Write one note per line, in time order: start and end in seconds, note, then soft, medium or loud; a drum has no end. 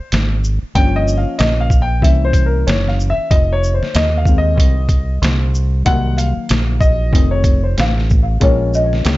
0.00 0.27 C5 medium
0.12 0.60 G#1 loud
0.12 snare loud
0.12 closed hi-hat medium
0.44 shaker medium
0.62 muted fingered electric bass stroke soft
0.75 1.23 G1 loud
0.75 1.67 F3 medium
0.75 1.67 A#3 medium
0.75 1.67 C#4 medium
0.75 0.97 G5 loud
0.75 kick loud
0.75 closed hi-hat medium
0.96 1.18 D#5 loud
1.08 shaker medium
1.18 1.40 F5 medium
1.26 muted fingered electric bass stroke soft
1.39 2.02 A#1 medium
1.39 1.61 D#5 loud
1.39 snare loud
1.39 closed hi-hat medium
1.60 1.82 F5 medium
1.70 kick medium
1.70 shaker medium
1.82 2.04 G5 loud
2.02 2.63 C2 loud
2.02 3.26 E3 medium
2.02 3.27 A#3 soft
2.02 3.27 C#4 medium
2.02 2.25 E5 medium
2.02 kick medium
2.02 closed hi-hat medium
2.25 2.44 C5 loud
2.33 kick medium
2.33 closed hi-hat medium
2.33 shaker medium
2.46 2.68 A#4 medium
2.67 3.15 F#1 loud
2.67 2.87 C#5 medium
2.67 snare loud
2.67 closed hi-hat medium
2.87 2.93 F5 medium
2.87 snare soft
3.00 shaker soft
3.10 3.32 E5 loud
3.31 3.79 F1 loud
3.31 3.50 D#5 loud
3.31 kick loud
3.31 closed hi-hat medium
3.53 3.72 C#5 loud
3.64 shaker medium
3.74 3.96 C5 medium
3.81 muted fingered electric bass stroke soft
3.81 snare soft
3.95 4.58 D#2 loud
3.95 4.17 D#5 loud
3.95 snare loud
3.95 closed hi-hat medium
4.17 4.36 F5 medium
4.25 4.71 D#3 medium
4.25 4.71 G#3 medium
4.25 4.71 C4 medium
4.25 kick medium
4.25 shaker soft
4.38 5.29 D#5 loud
4.58 5.19 C2 medium
4.58 kick medium
4.58 closed hi-hat loud
4.89 kick medium
4.89 closed hi-hat soft
4.89 shaker soft
5.22 5.83 C2 loud
5.22 snare loud
5.22 closed hi-hat medium
5.55 shaker soft
5.85 6.34 C2 loud
5.85 7.09 D#3 medium
5.85 7.10 F#3 medium
5.85 7.10 A#3 medium
5.85 6.16 F#5 loud
5.85 kick loud
5.85 closed hi-hat loud
6.18 6.83 F5 medium
6.18 closed hi-hat medium
6.18 shaker medium
6.37 muted fingered electric bass stroke medium
6.49 7.11 A#1 medium
6.49 snare loud
6.49 closed hi-hat medium
6.80 7.28 D#5 loud
6.80 kick medium
6.80 shaker medium
7.13 7.74 F1 loud
7.13 7.57 D#3 medium
7.13 7.58 A3 soft
7.13 7.58 C4 medium
7.13 kick loud
7.13 closed hi-hat medium
7.31 7.64 C#5 medium
7.44 kick medium
7.44 closed hi-hat medium
7.44 shaker medium
7.64 7.93 C5 medium
7.78 8.38 A1 loud
7.78 8.45 F5 loud
7.78 snare loud
7.78 closed hi-hat medium
7.98 snare soft
8.10 kick loud
8.10 shaker medium
8.40 9.02 A#1 loud
8.40 9.17 G#3 medium
8.40 9.17 A#3 medium
8.40 9.17 C#4 medium
8.40 9.17 F4 medium
8.40 9.17 A#4 medium
8.40 8.75 C#5 medium
8.40 kick loud
8.40 closed hi-hat medium
8.74 9.17 D#5 medium
8.74 shaker medium
8.93 snare soft
9.05 9.17 C#2 medium
9.05 snare loud
9.05 closed hi-hat medium